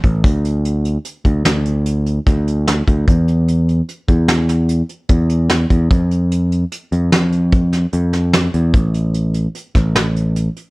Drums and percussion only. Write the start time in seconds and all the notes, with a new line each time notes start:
0.04 kick, closed hi-hat
0.24 kick, closed hi-hat
0.45 closed hi-hat
0.65 closed hi-hat
0.85 closed hi-hat
1.05 closed hi-hat
1.25 kick, closed hi-hat
1.45 snare, closed hi-hat
1.66 closed hi-hat
1.86 closed hi-hat
2.06 closed hi-hat
2.27 kick, snare, closed hi-hat
2.47 closed hi-hat
2.67 snare, closed hi-hat
2.87 kick, closed hi-hat
3.08 kick, closed hi-hat
3.28 closed hi-hat
3.48 closed hi-hat
3.69 closed hi-hat
3.89 closed hi-hat
4.09 kick, closed hi-hat
4.29 snare, closed hi-hat
4.49 snare, closed hi-hat
4.69 closed hi-hat
4.89 closed hi-hat
5.09 kick, closed hi-hat
5.30 closed hi-hat
5.50 snare, closed hi-hat
5.70 kick, closed hi-hat
5.91 kick, closed hi-hat
6.11 closed hi-hat
6.32 closed hi-hat
6.52 closed hi-hat
6.72 closed hi-hat
6.92 closed hi-hat
7.12 snare, closed hi-hat
7.32 closed hi-hat
7.52 kick, closed hi-hat
7.73 snare, closed hi-hat
7.92 closed hi-hat
8.13 snare, closed hi-hat
8.33 snare, closed hi-hat
8.54 closed hi-hat
8.74 kick, closed hi-hat
8.94 closed hi-hat
9.14 closed hi-hat
9.34 closed hi-hat
9.55 closed hi-hat
9.75 kick, snare, closed hi-hat
9.96 snare, closed hi-hat
10.16 closed hi-hat
10.36 closed hi-hat
10.56 closed hi-hat